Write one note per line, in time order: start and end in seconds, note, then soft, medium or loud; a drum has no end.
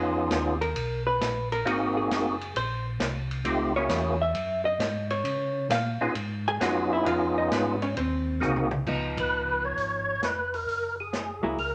0.00 0.29 F2 medium
0.00 0.55 B3 medium
0.00 0.55 C#4 medium
0.00 0.55 D#4 medium
0.00 0.55 F4 medium
0.00 0.56 G#4 medium
0.30 0.74 D#2 medium
0.30 snare medium
0.30 hi-hat pedal medium
0.30 ride medium
0.61 1.03 A#4 medium
0.61 ride medium
0.75 1.19 B1 medium
0.75 ride medium
1.07 1.48 B4 loud
1.20 1.64 A#1 medium
1.20 snare medium
1.20 hi-hat pedal medium
1.20 ride medium
1.52 1.94 A#4 medium
1.52 ride medium
1.65 2.09 G#1 medium
1.65 2.35 A#3 medium
1.65 2.35 C4 medium
1.65 2.35 D#4 medium
1.65 2.35 F#4 medium
1.65 2.35 G#4 medium
1.65 ride medium
1.97 2.52 G#4 medium
2.10 2.54 F#1 loud
2.10 snare medium
2.10 hi-hat pedal medium
2.10 ride medium
2.41 ride medium
2.55 2.99 A#1 medium
2.55 2.86 C5 medium
2.55 ride medium
2.99 3.43 C2 loud
2.99 snare medium
2.99 hi-hat pedal medium
2.99 ride medium
3.31 ride soft
3.44 3.88 C#2 medium
3.44 3.73 A3 medium
3.44 3.73 C4 medium
3.44 3.73 D#4 medium
3.44 3.73 F4 medium
3.44 3.73 G4 medium
3.44 ride medium
3.76 4.15 A#3 medium
3.76 4.15 C#4 medium
3.76 4.15 E4 medium
3.76 4.15 F#4 medium
3.76 4.15 G#4 medium
3.76 4.18 C#5 medium
3.89 4.33 E2 medium
3.89 snare medium
3.89 hi-hat pedal medium
3.89 ride medium
4.22 4.63 E5 loud
4.34 4.79 F#2 medium
4.34 ride medium
4.65 5.08 D#5 loud
4.78 5.23 G#2 medium
4.78 snare medium
4.78 hi-hat pedal medium
4.78 ride medium
5.10 5.67 C#5 loud
5.10 ride medium
5.24 5.68 C#3 medium
5.24 ride medium
5.69 5.98 A#2 loud
5.69 5.90 F5 loud
5.69 snare medium
5.69 hi-hat pedal medium
5.69 ride medium
6.01 6.08 A#2 soft
6.01 6.14 B3 medium
6.01 6.14 C#4 medium
6.01 6.14 D#4 medium
6.01 6.14 F4 medium
6.01 6.15 G#4 medium
6.15 6.59 G#2 medium
6.15 ride medium
6.48 6.62 G#4 medium
6.48 6.61 G#5 loud
6.60 7.04 F#2 medium
6.60 7.04 B3 medium
6.60 7.05 C#4 medium
6.60 7.05 D#4 medium
6.60 7.05 F4 medium
6.60 6.92 F#4 medium
6.60 7.05 G#4 medium
6.60 6.92 F#5 medium
6.60 snare medium
6.60 hi-hat pedal medium
6.60 ride medium
6.93 7.06 E4 medium
6.93 7.06 E5 loud
7.05 7.50 F2 medium
7.05 7.75 B3 medium
7.05 7.76 C#4 medium
7.05 7.76 D#4 medium
7.05 7.76 F4 medium
7.05 7.37 F4 medium
7.05 7.76 G#4 medium
7.05 7.36 F5 medium
7.05 ride medium
7.38 7.52 D#4 medium
7.38 7.51 D#5 loud
7.51 7.95 G#2 loud
7.51 7.82 B3 medium
7.51 7.82 B4 medium
7.51 snare medium
7.51 hi-hat pedal medium
7.51 ride medium
7.82 7.96 C#4 medium
7.82 7.96 C#5 loud
7.82 ride medium
7.97 8.40 D#2 medium
7.97 8.39 C4 medium
7.97 8.39 C5 medium
7.97 ride medium
8.40 8.85 C2 loud
8.40 8.69 A#3 medium
8.40 8.69 C4 medium
8.40 8.69 D#4 medium
8.40 8.69 F#4 medium
8.40 8.69 G#4 medium
8.40 hi-hat pedal medium
8.40 mid tom medium
8.56 mid tom medium
8.71 mid tom medium
8.86 9.73 C#2 medium
8.86 10.14 F3 medium
8.86 10.15 B3 medium
8.86 10.15 D#4 medium
8.86 kick medium
8.86 crash medium
9.17 9.65 B4 loud
9.17 kick medium
9.17 ride medium
9.65 10.25 C#5 loud
9.77 10.19 G#1 medium
9.77 open hi-hat soft
10.22 10.64 F1 medium
10.22 10.55 B4 medium
10.22 snare medium
10.22 closed hi-hat medium
10.54 10.96 A#4 medium
10.54 open hi-hat soft
10.67 11.39 F#1 medium
10.67 open hi-hat soft
11.00 11.42 G#4 medium
11.13 snare medium
11.13 closed hi-hat medium
11.43 11.56 C#2 medium
11.43 11.57 F#3 medium
11.43 11.57 A#3 medium
11.43 11.57 E4 medium
11.43 11.57 G#4 medium
11.57 11.75 C#2 medium
11.57 11.75 A#4 loud
11.57 open hi-hat soft